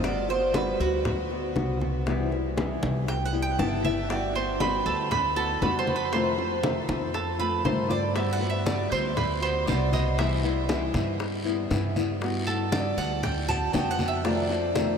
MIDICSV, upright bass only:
0, 0, Header, 1, 2, 480
1, 0, Start_track
1, 0, Key_signature, 1, "major"
1, 0, Tempo, 507185
1, 38, Time_signature, 4, 2, 24, 8
1, 14174, End_track
2, 0, Start_track
2, 0, Title_t, "Upright bass"
2, 0, Program_c, 0, 32
2, 0, Note_on_c, 0, 31, 87
2, 696, Note_off_c, 0, 31, 0
2, 755, Note_on_c, 0, 38, 89
2, 1439, Note_off_c, 0, 38, 0
2, 1480, Note_on_c, 0, 36, 83
2, 2618, Note_off_c, 0, 36, 0
2, 2677, Note_on_c, 0, 36, 90
2, 3361, Note_off_c, 0, 36, 0
2, 3397, Note_on_c, 0, 31, 94
2, 4538, Note_off_c, 0, 31, 0
2, 4599, Note_on_c, 0, 38, 94
2, 5282, Note_off_c, 0, 38, 0
2, 5318, Note_on_c, 0, 41, 84
2, 6458, Note_off_c, 0, 41, 0
2, 6518, Note_on_c, 0, 41, 93
2, 7202, Note_off_c, 0, 41, 0
2, 7237, Note_on_c, 0, 43, 94
2, 8378, Note_off_c, 0, 43, 0
2, 8440, Note_on_c, 0, 38, 92
2, 9123, Note_off_c, 0, 38, 0
2, 9160, Note_on_c, 0, 36, 98
2, 10299, Note_off_c, 0, 36, 0
2, 10358, Note_on_c, 0, 43, 84
2, 11042, Note_off_c, 0, 43, 0
2, 11080, Note_on_c, 0, 43, 89
2, 12219, Note_off_c, 0, 43, 0
2, 12277, Note_on_c, 0, 38, 101
2, 12962, Note_off_c, 0, 38, 0
2, 13001, Note_on_c, 0, 41, 95
2, 14139, Note_off_c, 0, 41, 0
2, 14174, End_track
0, 0, End_of_file